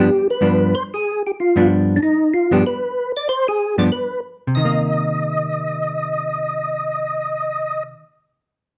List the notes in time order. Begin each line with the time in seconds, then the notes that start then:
0.00 G4
0.30 B4
0.41 G2 F3 B3 D4
0.75 C5
0.94 G#4
1.27 G4
1.40 F4
1.56 G2 F3 B3 D4
1.96 D4
2.03 D#4
2.34 F4
2.51 G2 F3 B3 D4 G4
2.66 B4
3.17 D5
3.29 C5
3.48 G#4
3.78 G2 F3 B3 D4 D5
3.92 B4
4.47 C3
4.55 D#3 D#5
4.65 A#3